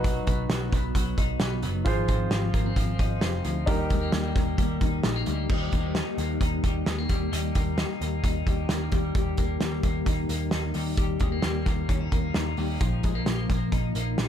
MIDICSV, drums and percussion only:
0, 0, Header, 1, 2, 480
1, 0, Start_track
1, 0, Key_signature, -3, "major"
1, 0, Tempo, 456274
1, 42, Time_signature, 4, 2, 24, 8
1, 9625, Key_signature, -3, "major"
1, 15024, End_track
2, 0, Start_track
2, 0, Title_t, "Drums"
2, 46, Note_on_c, 9, 36, 120
2, 48, Note_on_c, 9, 42, 103
2, 151, Note_off_c, 9, 36, 0
2, 153, Note_off_c, 9, 42, 0
2, 282, Note_on_c, 9, 42, 76
2, 288, Note_on_c, 9, 36, 92
2, 388, Note_off_c, 9, 42, 0
2, 394, Note_off_c, 9, 36, 0
2, 522, Note_on_c, 9, 38, 107
2, 523, Note_on_c, 9, 42, 82
2, 627, Note_off_c, 9, 38, 0
2, 629, Note_off_c, 9, 42, 0
2, 763, Note_on_c, 9, 36, 95
2, 766, Note_on_c, 9, 42, 73
2, 868, Note_off_c, 9, 36, 0
2, 871, Note_off_c, 9, 42, 0
2, 999, Note_on_c, 9, 36, 90
2, 1001, Note_on_c, 9, 42, 93
2, 1104, Note_off_c, 9, 36, 0
2, 1106, Note_off_c, 9, 42, 0
2, 1239, Note_on_c, 9, 36, 91
2, 1239, Note_on_c, 9, 42, 77
2, 1344, Note_off_c, 9, 36, 0
2, 1344, Note_off_c, 9, 42, 0
2, 1469, Note_on_c, 9, 38, 110
2, 1478, Note_on_c, 9, 42, 78
2, 1574, Note_off_c, 9, 38, 0
2, 1583, Note_off_c, 9, 42, 0
2, 1710, Note_on_c, 9, 42, 72
2, 1815, Note_off_c, 9, 42, 0
2, 1953, Note_on_c, 9, 42, 90
2, 1954, Note_on_c, 9, 36, 116
2, 2058, Note_off_c, 9, 42, 0
2, 2059, Note_off_c, 9, 36, 0
2, 2191, Note_on_c, 9, 42, 80
2, 2196, Note_on_c, 9, 36, 89
2, 2296, Note_off_c, 9, 42, 0
2, 2301, Note_off_c, 9, 36, 0
2, 2429, Note_on_c, 9, 38, 107
2, 2430, Note_on_c, 9, 42, 77
2, 2534, Note_off_c, 9, 38, 0
2, 2536, Note_off_c, 9, 42, 0
2, 2671, Note_on_c, 9, 36, 93
2, 2675, Note_on_c, 9, 42, 69
2, 2776, Note_off_c, 9, 36, 0
2, 2780, Note_off_c, 9, 42, 0
2, 2907, Note_on_c, 9, 36, 88
2, 2913, Note_on_c, 9, 42, 89
2, 3012, Note_off_c, 9, 36, 0
2, 3018, Note_off_c, 9, 42, 0
2, 3148, Note_on_c, 9, 36, 92
2, 3150, Note_on_c, 9, 42, 80
2, 3254, Note_off_c, 9, 36, 0
2, 3256, Note_off_c, 9, 42, 0
2, 3381, Note_on_c, 9, 38, 105
2, 3390, Note_on_c, 9, 42, 82
2, 3486, Note_off_c, 9, 38, 0
2, 3495, Note_off_c, 9, 42, 0
2, 3624, Note_on_c, 9, 42, 75
2, 3729, Note_off_c, 9, 42, 0
2, 3865, Note_on_c, 9, 42, 99
2, 3866, Note_on_c, 9, 36, 125
2, 3970, Note_off_c, 9, 42, 0
2, 3971, Note_off_c, 9, 36, 0
2, 4104, Note_on_c, 9, 42, 78
2, 4108, Note_on_c, 9, 36, 87
2, 4209, Note_off_c, 9, 42, 0
2, 4214, Note_off_c, 9, 36, 0
2, 4339, Note_on_c, 9, 38, 112
2, 4340, Note_on_c, 9, 42, 78
2, 4444, Note_off_c, 9, 38, 0
2, 4446, Note_off_c, 9, 42, 0
2, 4580, Note_on_c, 9, 38, 36
2, 4584, Note_on_c, 9, 36, 99
2, 4587, Note_on_c, 9, 42, 73
2, 4685, Note_off_c, 9, 38, 0
2, 4689, Note_off_c, 9, 36, 0
2, 4692, Note_off_c, 9, 42, 0
2, 4821, Note_on_c, 9, 36, 92
2, 4822, Note_on_c, 9, 42, 86
2, 4926, Note_off_c, 9, 36, 0
2, 4927, Note_off_c, 9, 42, 0
2, 5060, Note_on_c, 9, 42, 82
2, 5061, Note_on_c, 9, 36, 88
2, 5165, Note_off_c, 9, 42, 0
2, 5166, Note_off_c, 9, 36, 0
2, 5297, Note_on_c, 9, 38, 109
2, 5305, Note_on_c, 9, 42, 85
2, 5402, Note_off_c, 9, 38, 0
2, 5411, Note_off_c, 9, 42, 0
2, 5535, Note_on_c, 9, 42, 78
2, 5640, Note_off_c, 9, 42, 0
2, 5781, Note_on_c, 9, 49, 81
2, 5782, Note_on_c, 9, 36, 107
2, 5886, Note_off_c, 9, 49, 0
2, 5887, Note_off_c, 9, 36, 0
2, 6020, Note_on_c, 9, 42, 75
2, 6025, Note_on_c, 9, 36, 83
2, 6125, Note_off_c, 9, 42, 0
2, 6131, Note_off_c, 9, 36, 0
2, 6258, Note_on_c, 9, 38, 94
2, 6259, Note_on_c, 9, 42, 72
2, 6363, Note_off_c, 9, 38, 0
2, 6364, Note_off_c, 9, 42, 0
2, 6504, Note_on_c, 9, 42, 67
2, 6609, Note_off_c, 9, 42, 0
2, 6741, Note_on_c, 9, 36, 83
2, 6743, Note_on_c, 9, 42, 85
2, 6846, Note_off_c, 9, 36, 0
2, 6848, Note_off_c, 9, 42, 0
2, 6982, Note_on_c, 9, 42, 80
2, 6983, Note_on_c, 9, 36, 82
2, 7087, Note_off_c, 9, 42, 0
2, 7088, Note_off_c, 9, 36, 0
2, 7221, Note_on_c, 9, 38, 102
2, 7230, Note_on_c, 9, 42, 76
2, 7326, Note_off_c, 9, 38, 0
2, 7335, Note_off_c, 9, 42, 0
2, 7461, Note_on_c, 9, 42, 69
2, 7464, Note_on_c, 9, 36, 80
2, 7566, Note_off_c, 9, 42, 0
2, 7569, Note_off_c, 9, 36, 0
2, 7710, Note_on_c, 9, 42, 92
2, 7815, Note_off_c, 9, 42, 0
2, 7943, Note_on_c, 9, 42, 77
2, 7947, Note_on_c, 9, 36, 87
2, 8048, Note_off_c, 9, 42, 0
2, 8053, Note_off_c, 9, 36, 0
2, 8182, Note_on_c, 9, 38, 99
2, 8183, Note_on_c, 9, 42, 71
2, 8287, Note_off_c, 9, 38, 0
2, 8288, Note_off_c, 9, 42, 0
2, 8432, Note_on_c, 9, 42, 64
2, 8537, Note_off_c, 9, 42, 0
2, 8665, Note_on_c, 9, 36, 87
2, 8669, Note_on_c, 9, 42, 85
2, 8770, Note_off_c, 9, 36, 0
2, 8774, Note_off_c, 9, 42, 0
2, 8907, Note_on_c, 9, 36, 85
2, 8909, Note_on_c, 9, 42, 71
2, 9012, Note_off_c, 9, 36, 0
2, 9014, Note_off_c, 9, 42, 0
2, 9141, Note_on_c, 9, 38, 100
2, 9150, Note_on_c, 9, 42, 81
2, 9247, Note_off_c, 9, 38, 0
2, 9255, Note_off_c, 9, 42, 0
2, 9380, Note_on_c, 9, 42, 67
2, 9387, Note_on_c, 9, 36, 85
2, 9485, Note_off_c, 9, 42, 0
2, 9492, Note_off_c, 9, 36, 0
2, 9624, Note_on_c, 9, 42, 82
2, 9626, Note_on_c, 9, 36, 110
2, 9729, Note_off_c, 9, 42, 0
2, 9731, Note_off_c, 9, 36, 0
2, 9862, Note_on_c, 9, 42, 75
2, 9869, Note_on_c, 9, 36, 82
2, 9967, Note_off_c, 9, 42, 0
2, 9974, Note_off_c, 9, 36, 0
2, 10105, Note_on_c, 9, 38, 98
2, 10107, Note_on_c, 9, 42, 75
2, 10210, Note_off_c, 9, 38, 0
2, 10212, Note_off_c, 9, 42, 0
2, 10344, Note_on_c, 9, 42, 68
2, 10346, Note_on_c, 9, 36, 84
2, 10450, Note_off_c, 9, 42, 0
2, 10451, Note_off_c, 9, 36, 0
2, 10586, Note_on_c, 9, 36, 83
2, 10587, Note_on_c, 9, 42, 87
2, 10692, Note_off_c, 9, 36, 0
2, 10692, Note_off_c, 9, 42, 0
2, 10828, Note_on_c, 9, 42, 77
2, 10933, Note_off_c, 9, 42, 0
2, 11059, Note_on_c, 9, 38, 105
2, 11067, Note_on_c, 9, 42, 77
2, 11164, Note_off_c, 9, 38, 0
2, 11172, Note_off_c, 9, 42, 0
2, 11299, Note_on_c, 9, 46, 67
2, 11404, Note_off_c, 9, 46, 0
2, 11543, Note_on_c, 9, 42, 87
2, 11546, Note_on_c, 9, 36, 109
2, 11648, Note_off_c, 9, 42, 0
2, 11651, Note_off_c, 9, 36, 0
2, 11778, Note_on_c, 9, 42, 71
2, 11789, Note_on_c, 9, 36, 88
2, 11883, Note_off_c, 9, 42, 0
2, 11895, Note_off_c, 9, 36, 0
2, 12018, Note_on_c, 9, 38, 96
2, 12020, Note_on_c, 9, 42, 74
2, 12124, Note_off_c, 9, 38, 0
2, 12125, Note_off_c, 9, 42, 0
2, 12262, Note_on_c, 9, 38, 36
2, 12269, Note_on_c, 9, 36, 92
2, 12269, Note_on_c, 9, 42, 71
2, 12367, Note_off_c, 9, 38, 0
2, 12374, Note_off_c, 9, 36, 0
2, 12374, Note_off_c, 9, 42, 0
2, 12508, Note_on_c, 9, 36, 84
2, 12510, Note_on_c, 9, 42, 83
2, 12613, Note_off_c, 9, 36, 0
2, 12615, Note_off_c, 9, 42, 0
2, 12751, Note_on_c, 9, 36, 87
2, 12751, Note_on_c, 9, 42, 75
2, 12856, Note_off_c, 9, 42, 0
2, 12857, Note_off_c, 9, 36, 0
2, 12986, Note_on_c, 9, 38, 97
2, 12995, Note_on_c, 9, 42, 78
2, 13092, Note_off_c, 9, 38, 0
2, 13100, Note_off_c, 9, 42, 0
2, 13225, Note_on_c, 9, 46, 70
2, 13331, Note_off_c, 9, 46, 0
2, 13472, Note_on_c, 9, 42, 95
2, 13474, Note_on_c, 9, 36, 116
2, 13577, Note_off_c, 9, 42, 0
2, 13579, Note_off_c, 9, 36, 0
2, 13711, Note_on_c, 9, 42, 75
2, 13718, Note_on_c, 9, 36, 84
2, 13816, Note_off_c, 9, 42, 0
2, 13824, Note_off_c, 9, 36, 0
2, 13952, Note_on_c, 9, 38, 98
2, 13953, Note_on_c, 9, 42, 71
2, 14057, Note_off_c, 9, 38, 0
2, 14058, Note_off_c, 9, 42, 0
2, 14193, Note_on_c, 9, 38, 34
2, 14198, Note_on_c, 9, 36, 88
2, 14200, Note_on_c, 9, 42, 68
2, 14298, Note_off_c, 9, 38, 0
2, 14303, Note_off_c, 9, 36, 0
2, 14305, Note_off_c, 9, 42, 0
2, 14436, Note_on_c, 9, 36, 88
2, 14436, Note_on_c, 9, 42, 83
2, 14541, Note_off_c, 9, 36, 0
2, 14541, Note_off_c, 9, 42, 0
2, 14676, Note_on_c, 9, 42, 73
2, 14781, Note_off_c, 9, 42, 0
2, 14916, Note_on_c, 9, 38, 104
2, 14925, Note_on_c, 9, 42, 76
2, 15022, Note_off_c, 9, 38, 0
2, 15024, Note_off_c, 9, 42, 0
2, 15024, End_track
0, 0, End_of_file